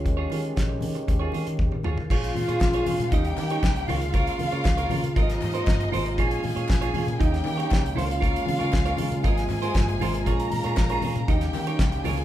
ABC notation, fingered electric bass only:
X:1
M:4/4
L:1/16
Q:1/4=118
K:Ebmix
V:1 name="Fingered electric bass" clef=bass
E,,2 E,2 B,,,2 E,2 E,,2 E, E, E,, E, E,, E, | B,,,2 B,, B,, B,,,2 B,, B,, E,,2 E,2 C,,2 D,,2- | D,,2 D, D, D,,2 D, D, A,,,2 A,,2 G,,,2 A,,,2 | B,,,2 B,, B,, B,,,2 B,, B,, E,,2 E,2 C,,2 D,,2- |
D,,2 D, D, D,,2 D, D, A,,,2 A,,2 G,,,2 A,,,2 | B,,,2 B,, B,, B,,,2 B,, B,, E,,2 E,2 C,,2 D,,2 |]